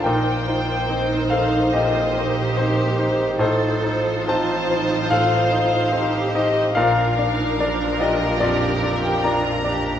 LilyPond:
<<
  \new Staff \with { instrumentName = "Violin section" } { \time 4/4 \key bes \major \tempo 4 = 73 g''4. f''8 ees''4 c''4 | c''4 a''4 f''4. ees''8 | f''4. ees''8 d''8. g''16 bes''4 | }
  \new Staff \with { instrumentName = "Violin section" } { \time 4/4 \key bes \major c''1 | c''1 | bes'1 | }
  \new Staff \with { instrumentName = "Grand piano" } { \time 4/4 \key bes \major << { <bes' g''>4. <a' f''>8 <g' ees''>4 <ees' c''>4 | <ees' c''>4 a''4 <a' f''>4. <g' ees''>8 | <bes' f''>4. <g' ees''>8 <f' d''>8. <bes' g''>16 bes''4 | } \\ { bes,8 <ees' c''>8 <c' ees' c''>8 <ees' c''>8 bes,8 <ees' c''>8 c'8 <ees' c''>8 | a,8 <ees' c''>8 <c' ees' c''>8 <ees' c''>8 a,8 <ees' c''>8 <c' ees' c''>8 <ees' c''>8 | bes,8 <d' d''>8 <bes d' d''>8 <d' d''>8 f,8 <d' d''>8 <bes d' d''>8 <d' d''>8 | } >> }
  \new Staff \with { instrumentName = "Cello section" } { \time 4/4 \key bes \major ees'8 f'8 ees'4 f'8 g'4. | a'4 f'2 g'4 | f'8 ees'8 d'8 f'8 g'4 f'8 g'8 | }
  \new Staff \with { instrumentName = "Viola section" } { \time 4/4 \key bes \major <ees ees'>1 | <f ees'>1 | <f d'>1 | }
  \new Staff \with { instrumentName = "Double bass section" } { \clef bass \time 4/4 \key bes \major bes,,1 | a,,1 | bes,,1 | }
>>